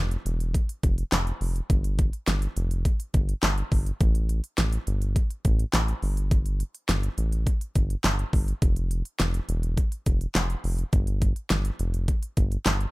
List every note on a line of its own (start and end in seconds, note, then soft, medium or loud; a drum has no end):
0.00 0.17 F1 loud
0.11 closed hi-hat medium
0.26 0.56 E1 loud
0.26 closed hi-hat medium
0.40 closed hi-hat medium
0.54 kick medium
0.54 closed hi-hat medium
0.69 closed hi-hat medium
0.83 1.04 F1 loud
0.83 kick loud
0.83 closed hi-hat medium
0.98 closed hi-hat soft
1.12 1.32 F1 loud
1.12 snare loud
1.12 clap medium
1.12 closed hi-hat medium
1.27 closed hi-hat soft
1.41 1.61 F1 loud
1.41 open hi-hat medium
1.56 closed hi-hat medium
1.70 2.10 G1 loud
1.70 kick loud
1.70 closed hi-hat medium
1.84 closed hi-hat medium
1.99 kick loud
1.99 closed hi-hat medium
2.13 closed hi-hat soft
2.28 2.48 G1 loud
2.28 snare loud
2.28 closed hi-hat medium
2.42 closed hi-hat medium
2.56 2.87 F1 loud
2.56 closed hi-hat medium
2.71 closed hi-hat medium
2.85 kick medium
2.85 closed hi-hat medium
3.00 closed hi-hat medium
3.14 3.34 G1 loud
3.14 kick loud
3.14 closed hi-hat medium
3.29 closed hi-hat soft
3.43 3.63 G1 loud
3.43 snare loud
3.43 clap medium
3.43 closed hi-hat medium
3.58 closed hi-hat soft
3.72 3.92 G1 loud
3.72 kick loud
3.72 open hi-hat medium
3.86 closed hi-hat medium
4.01 4.41 A1 loud
4.01 kick loud
4.01 closed hi-hat medium
4.15 closed hi-hat medium
4.29 closed hi-hat medium
4.44 closed hi-hat medium
4.58 4.78 A1 loud
4.58 snare loud
4.58 closed hi-hat medium
4.72 closed hi-hat medium
4.87 5.17 G1 medium
4.87 closed hi-hat medium
5.02 closed hi-hat medium
5.16 kick medium
5.16 closed hi-hat medium
5.30 closed hi-hat medium
5.45 5.65 A1 loud
5.45 kick loud
5.45 closed hi-hat medium
5.59 closed hi-hat soft
5.73 5.94 A1 loud
5.73 snare loud
5.73 clap medium
5.73 closed hi-hat medium
5.88 closed hi-hat soft
6.02 6.63 G1 loud
6.02 open hi-hat medium
6.17 closed hi-hat medium
6.31 kick loud
6.31 closed hi-hat medium
6.46 closed hi-hat medium
6.60 closed hi-hat medium
6.75 closed hi-hat medium
6.89 7.09 G1 loud
6.89 snare loud
6.89 closed hi-hat medium
7.03 closed hi-hat medium
7.18 7.48 A1 loud
7.18 closed hi-hat medium
7.32 closed hi-hat medium
7.47 kick loud
7.47 closed hi-hat medium
7.61 closed hi-hat medium
7.75 7.96 G1 loud
7.75 kick loud
7.75 closed hi-hat medium
7.90 closed hi-hat soft
8.04 8.25 G1 medium
8.04 snare loud
8.04 clap medium
8.04 closed hi-hat medium
8.19 closed hi-hat soft
8.33 8.53 G1 medium
8.33 kick loud
8.33 open hi-hat medium
8.48 closed hi-hat medium
8.62 9.02 F1 loud
8.62 kick loud
8.62 closed hi-hat medium
8.76 closed hi-hat medium
8.91 closed hi-hat medium
9.05 closed hi-hat medium
9.20 9.40 F1 loud
9.20 snare loud
9.20 closed hi-hat medium
9.34 closed hi-hat medium
9.49 9.79 E1 loud
9.49 closed hi-hat medium
9.63 closed hi-hat medium
9.77 kick medium
9.77 closed hi-hat medium
9.92 closed hi-hat medium
10.06 10.27 F1 loud
10.06 kick loud
10.06 closed hi-hat medium
10.21 closed hi-hat soft
10.35 10.55 F1 medium
10.35 snare loud
10.35 clap medium
10.35 closed hi-hat medium
10.50 closed hi-hat soft
10.64 10.84 F1 loud
10.64 open hi-hat medium
10.79 closed hi-hat medium
10.93 11.33 G1 loud
10.93 kick loud
10.93 closed hi-hat medium
11.07 closed hi-hat medium
11.22 kick loud
11.22 closed hi-hat medium
11.36 closed hi-hat medium
11.50 11.71 G1 loud
11.50 snare loud
11.50 closed hi-hat medium
11.65 closed hi-hat medium
11.79 12.10 F1 loud
11.79 closed hi-hat medium
11.94 closed hi-hat medium
12.08 kick medium
12.08 closed hi-hat medium
12.23 closed hi-hat medium
12.37 12.57 G1 loud
12.37 kick loud
12.37 closed hi-hat medium
12.52 closed hi-hat soft
12.66 12.86 G1 loud
12.66 snare loud
12.66 clap medium
12.66 closed hi-hat medium
12.80 closed hi-hat soft